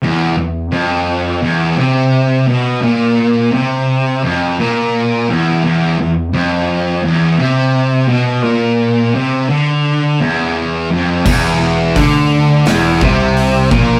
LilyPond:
<<
  \new Staff \with { instrumentName = "Distorted electric guitar" } { \clef bass \time 4/4 \key c \lydian \tempo 4 = 86 r1 | r1 | r1 | r1 |
e,4 d4 e,8 c4 ais,8 | }
  \new Staff \with { instrumentName = "Distorted electric guitar" } { \clef bass \time 4/4 \key c \lydian e,8 e,8 f,4 e,8 c4 b,8 | ais,4 c4 f,8 ais,4 e,8 | e,8 e,8 f,4 e,8 c4 b,8 | ais,4 c8 d4 e,4 f,8 |
e,4 d4 e,8 c4 ais,8 | }
  \new Staff \with { instrumentName = "Distorted electric guitar" } { \clef bass \time 4/4 \key c \lydian e,8 e,8 f,4 e,8 c4 b,8 | ais,4 c4 f,8 ais,4 e,8 | e,8 e,8 f,4 e,8 c4 b,8 | ais,4 c8 d4 e,4 f,8 |
e,4 d4 e,8 c4 ais,8 | }
  \new Staff \with { instrumentName = "Picked electric bass" } { \clef bass \time 4/4 \key c \lydian r1 | r1 | r1 | r1 |
e,,4 d,4 e,,8 c,4 ais,,8 | }
  \new DrumStaff \with { instrumentName = "Drums" } \drummode { \time 4/4 r4 r4 r4 r4 | r4 r4 r4 r4 | r4 r4 r4 r4 | r4 r4 r4 r4 |
<cymc bd>16 sn8. <hho bd>4 <hho sn>8 bd8 hho8 bd8 | }
>>